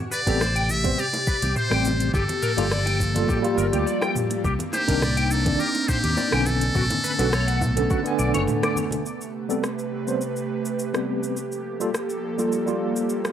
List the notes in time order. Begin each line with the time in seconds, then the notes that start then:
Already playing: C3 G4
0.11 B4 D5, shaker
0.27 A1 G3 B3 C4 G4 A4, kick, closed hi-hat, shaker
0.41 C5, cross-stick, high bongo, high conga, shaker
0.56 G5, closed hi-hat, shaker
0.69 E5, mid tom, high bongo, shaker
0.84 G3 B3 C4 C5, kick, closed hi-hat, high conga, shaker
0.98 G4 D5, shaker
1.13 closed hi-hat, high bongo, shaker
1.27 B4, kick, shaker
1.42 C2 G4, closed hi-hat, high bongo, high conga, shaker
1.56 C5, mid tom, shaker
1.70 A1 G3 C4 G4 G5, cross-stick, shaker
1.85 high bongo, high conga, shaker
2.00 closed hi-hat, shaker
2.13 G1 F3 A#3 G4 A4, kick, high bongo, shaker
2.29 closed hi-hat, high conga, shaker
2.42 A#4, mid tom, shaker
2.57 G1 G3 A#3 F4 G4 A4, closed hi-hat, high bongo, shaker
2.71 D5, cross-stick, high conga, shaker
2.86 G5, closed hi-hat, high bongo, shaker
3.00 kick, shaker
3.15 G3 A#3 F4 A4, closed hi-hat, high conga, shaker
3.28 G4, kick, mid tom, high bongo, shaker
3.42 G3 A#3 F4 G4, closed hi-hat, shaker
3.57 G1 A#4, high bongo, shaker
3.73 D2 G4, closed hi-hat, high conga, shaker
3.86 D5, shaker
4.01 G5, cross-stick, high bongo, shaker
4.15 mid tom, high conga, shaker
4.30 closed hi-hat, high bongo, shaker
4.44 C2 C4 D4 D#4 G4, kick, shaker
4.59 closed hi-hat, high conga, shaker
4.73 G4 C5, high bongo, shaker
4.88 C2 D#3 C4 D4 G4 A#4, kick, closed hi-hat, shaker
5.02 D5, cross-stick, mid tom, high bongo, high conga, shaker
5.17 G5, closed hi-hat, shaker
5.31 A4, shaker
5.46 D#3 C4 D4 D5, kick, closed hi-hat, high bongo, high conga, shaker
5.59 G4 A#4, shaker
5.75 closed hi-hat, high bongo, shaker
5.88 G4 C5, kick, mid tom, shaker
6.04 D#2 G4, closed hi-hat, high conga, shaker
6.17 D5, high bongo, shaker
6.31 B1 D3 B3 C#4 G5 G#5, cross-stick, shaker
6.46 A3 B3 A4, high bongo, high conga, shaker
6.61 closed hi-hat, shaker
6.75 B1 F#4, kick, mid tom, shaker
6.90 closed hi-hat, high bongo, high conga, shaker
7.04 B4, shaker
7.19 B1 D3 B3 C#4 F#4 A4, closed hi-hat, high bongo, shaker
7.32 C#5, cross-stick, high conga, shaker
7.48 F#5, closed hi-hat, shaker
7.61 kick, mid tom, high bongo, shaker
7.76 D3 B3 C#4 A4, closed hi-hat, high conga, shaker
7.90 F#4, kick, high bongo, shaker
8.04 D3 B3 G#5, closed hi-hat, shaker
8.19 B1 D5, shaker
8.34 F#1 C#5, closed hi-hat, high bongo, high conga, shaker
8.47 mid tom, low conga, shaker
8.63 D5, cross-stick, closed hi-hat, high bongo, shaker
8.76 high conga, shaker
8.91 closed hi-hat, low conga, shaker
9.06 C3 A3 G4 B4, shaker
9.21 shaker
9.49 G3 B3 C4 A4, shaker
9.64 cross-stick, shaker
9.79 shaker
10.07 G3 B3 C4 C5, shaker
10.21 shaker
10.36 shaker
10.65 shaker
10.79 shaker
10.93 G3 B3 C4 G4, cross-stick, shaker
11.23 shaker
11.36 F3 A#3 A4, shaker
11.52 shaker
11.80 G3 A#3 F4 A4, shaker
11.94 cross-stick, shaker
12.10 shaker
12.38 G3 A#3 F4 A4, shaker
12.52 shaker
12.66 G3 A#3 F4 G4, shaker
12.96 shaker
13.10 shaker
13.25 cross-stick, shaker